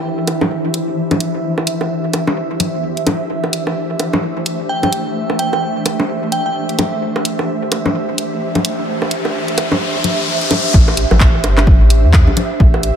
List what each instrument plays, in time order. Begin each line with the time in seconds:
Already playing: analog synth bass A1, synth drone E3 E4, ambient pad D4 G4 C5 E5
0.27 analog synth bass G1, closed hi-hat, high bongo
0.41 low bongo, low conga
0.65 analog synth bass A1
0.74 closed hi-hat
0.88 analog synth bass A1
1.11 analog synth bass A1, closed hi-hat, low bongo, low conga
1.20 closed hi-hat
1.44 analog synth bass A1
1.58 high bongo
1.67 closed hi-hat
1.81 analog synth bass A1, high bongo
2.13 analog synth bass G1, closed hi-hat, high bongo
2.27 low bongo
2.51 analog synth bass A1
2.60 closed hi-hat, low conga
2.74 analog synth bass E2
2.97 analog synth bass A1, closed hi-hat
3.07 closed hi-hat, low bongo, low conga
3.30 analog synth bass A1, synth drone A3
3.44 high bongo
3.53 closed hi-hat
3.67 analog synth bass A1, high bongo
4.00 analog synth bass G1, closed hi-hat, high bongo
4.13 low bongo, low conga
4.37 analog synth bass A1
4.46 closed hi-hat
4.60 analog synth bass A1
4.69 synth bell G5
4.83 analog synth bass A1, synth bell G5, closed hi-hat, low bongo, low conga
4.93 closed hi-hat
5.16 analog synth bass A1
5.30 high bongo
5.39 synth bell G5, closed hi-hat
5.53 analog synth bass A1, synth bell G5, high bongo
5.86 analog synth bass G1, closed hi-hat, high bongo
6.00 low bongo
6.23 analog synth bass A1
6.32 synth bell G5, closed hi-hat
6.46 analog synth bass A1, synth bell G5
6.69 analog synth bass A1, closed hi-hat
6.79 closed hi-hat, low bongo, low conga
7.02 analog synth bass A1, riser
7.16 high bongo
7.25 closed hi-hat
7.39 analog synth bass A1, high bongo
7.72 analog synth bass G1, closed hi-hat, high bongo
7.86 low bongo, low conga
8.09 analog synth bass A1
8.18 closed hi-hat
8.32 analog synth bass A1
8.55 analog synth bass A1, closed hi-hat, low bongo, low conga
8.65 closed hi-hat
8.88 analog synth bass A1
9.02 high bongo
9.11 closed hi-hat
9.25 analog synth bass A1, high bongo
9.48 closed hi-hat
9.58 analog synth bass G1, closed hi-hat, high bongo
9.72 low bongo, low conga
9.95 analog synth bass E2
10.04 closed hi-hat, low conga
10.18 analog synth bass A1
10.41 analog synth bass A1, closed hi-hat
10.51 closed hi-hat, low bongo, low conga
10.74 analog synth bass A1, kick
10.88 high bongo
10.97 closed hi-hat
11.11 analog synth bass A1, high bongo, low conga
11.20 kick, clap
11.44 analog synth bass G1, closed hi-hat, high bongo
11.58 clap, low bongo
11.67 kick
11.81 analog synth bass A1
11.90 closed hi-hat
12.04 analog synth bass E2
12.14 kick, clap
12.27 analog synth bass A1, low bongo
12.37 closed hi-hat, low conga
12.60 analog synth bass A1, kick
12.74 high bongo
12.83 closed hi-hat